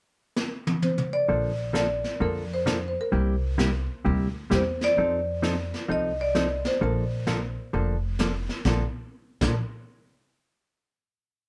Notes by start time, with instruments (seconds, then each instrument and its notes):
0.36 snare
0.67 high tom
0.82 marimba C5, high tom
0.98 mid tom
1.13 marimba D5
1.28 upright bass A#1, hollow-body jazz guitar D3 F3 A#3 D4 A4, brush sweep
1.73 hollow-body jazz guitar D3 F3 A#3 D4 A4, marimba D5, snare, hi-hat pedal
2.04 snare
2.20 upright bass F2, hollow-body jazz guitar D3 F3 A#3 D4 A4, marimba A#4, brush sweep
2.54 marimba C5
2.66 hollow-body jazz guitar D3 F3 A#3 D4 A4, snare, hi-hat pedal
2.88 marimba C5
3.01 marimba A#4
3.12 upright bass C2, hollow-body jazz guitar C3 G3 A#3 E4 G4, brush sweep
3.58 hollow-body jazz guitar C3 G3 A#3 E4 G4, snare, hi-hat pedal
4.05 upright bass D2, hollow-body jazz guitar C3 G3 A#3 E4 G4, brush sweep
4.50 upright bass E2, hollow-body jazz guitar C3 G3 A#3 E4 G4, snare, hi-hat pedal
4.55 marimba C5
4.81 marimba D5, snare
4.97 upright bass F2, hollow-body jazz guitar F3 C4 D#4 A4, brush sweep
5.42 hollow-body jazz guitar F3 C4 D#4 A4, snare, hi-hat pedal
5.74 snare
5.88 upright bass C2, hollow-body jazz guitar F3 C4 D#4 A4, marimba D#5, brush sweep
6.21 marimba D5
6.35 hollow-body jazz guitar F3 C4 D#4 A4, snare, hi-hat pedal
6.65 marimba C5, snare
6.81 upright bass A#1, hollow-body jazz guitar D3 F3 A#3 D4 A4, marimba A#4, brush sweep
7.27 hollow-body jazz guitar D3 F3 A#3 D4 A4, snare, hi-hat pedal
7.73 upright bass F1, hollow-body jazz guitar D3 F3 A#3 D4 A4, brush sweep
8.19 hollow-body jazz guitar D3 F3 A#3 D4 A4, snare, hi-hat pedal
8.49 snare
8.65 upright bass A#1, hollow-body jazz guitar A#2 D3 F3 A#3 D4 A4, kick, snare
9.41 upright bass A#1, hollow-body jazz guitar A#2 D3 F3 A#3 D4 A4, kick, snare, crash